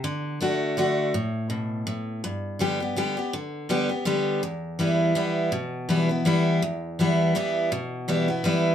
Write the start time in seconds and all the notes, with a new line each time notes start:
0.04 D3
0.41 D3 A3 D4 F#4
0.77 D3 A3 D4 F#4
1.14 A2
1.50 B2
1.87 A2
2.24 G2
2.59 D3 G3 B3 G4
2.80 B3 G4
2.96 D3 G3 B3 G4
3.17 B3 G4
3.33 D3
3.69 D3 G3 B3 G4
3.89 B3 G4
4.05 D3 G3 B3 G4
4.43 E2
4.79 E3 G3 B3 E4
5.15 E3 G3 B3 E4
5.52 B2
5.89 E3 G3 B3 E4
6.09 B3 E4
6.25 E3 G3 B3 E4
6.62 E2
6.99 E3 G3 B3 E4
7.35 E3 G3 B3 E4
7.72 B2
8.08 E3 G3 B3 E4
8.28 B3 E4
8.44 E3 G3 B3 E4